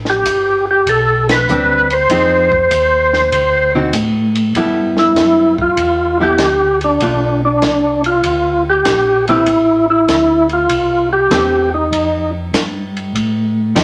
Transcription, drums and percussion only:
0.05 snare soft
0.25 kick soft
0.25 hi-hat pedal medium
0.25 ride medium
0.87 kick soft
0.87 ride medium
1.29 snare medium
1.29 ride medium
1.49 hi-hat pedal medium
1.90 ride soft
2.10 kick soft
2.10 ride medium
2.52 kick soft
2.71 kick soft
2.71 hi-hat pedal medium
2.71 ride medium
3.13 snare soft
3.32 kick soft
3.32 ride medium
3.93 kick soft
3.93 hi-hat pedal medium
3.93 ride medium
4.35 ride soft
4.55 kick soft
4.55 ride medium
4.97 snare soft
5.16 kick soft
5.16 snare medium
5.16 hi-hat pedal soft
5.16 ride medium
5.58 kick medium
5.77 kick soft
5.77 ride medium
6.38 kick soft
6.38 snare medium
6.38 hi-hat pedal medium
6.38 ride medium
6.81 ride soft
7.00 kick soft
7.00 ride medium
7.62 kick soft
7.62 snare medium
7.62 hi-hat pedal medium
7.62 ride medium
8.04 ride soft
8.24 kick soft
8.24 ride medium
8.85 kick soft
8.85 snare medium
8.85 hi-hat pedal medium
8.85 ride medium
9.28 ride soft
9.46 kick soft
9.46 ride medium
10.08 kick soft
10.08 snare medium
10.08 hi-hat pedal medium
10.08 ride medium
10.49 ride soft
10.69 kick soft
10.69 ride medium
11.31 kick soft
11.31 snare medium
11.31 hi-hat pedal medium
11.31 ride medium
11.92 kick soft
11.92 ride medium
12.54 kick soft
12.54 snare medium
12.54 hi-hat pedal medium
12.54 ride medium
12.97 ride soft
13.15 kick soft
13.15 ride medium
13.76 kick soft
13.76 snare medium
13.76 hi-hat pedal medium
13.76 ride medium

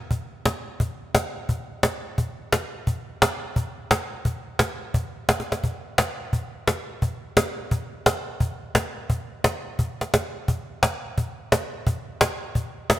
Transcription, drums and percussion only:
0.11 cajon bass soft
0.46 cajon slap medium
0.80 cajon bass soft
1.15 cajon slap medium
1.49 cajon bass soft
1.83 cajon slap medium
2.18 cajon bass soft
2.52 cajon slap medium
2.87 cajon bass soft
3.22 cajon slap medium
3.56 cajon bass soft
3.91 cajon slap medium
4.25 cajon bass soft
4.59 cajon slap medium
4.94 cajon bass soft
5.29 cajon slap medium
5.40 cajon slap soft
5.52 cajon slap soft
5.64 cajon bass soft
5.98 cajon slap medium
6.33 cajon bass soft
6.67 cajon slap medium
7.02 cajon bass soft
7.37 cajon slap medium
7.71 cajon bass soft
8.06 cajon slap medium
8.40 cajon bass soft
8.75 cajon slap medium
9.10 cajon bass soft
9.44 cajon slap medium
9.79 cajon bass soft
10.01 cajon slap soft
10.14 cajon slap medium
10.48 cajon bass soft
10.83 cajon slap medium
11.18 cajon bass soft
11.52 cajon slap medium
11.87 cajon bass soft
12.21 cajon slap medium
12.55 cajon bass soft
12.90 cajon slap medium

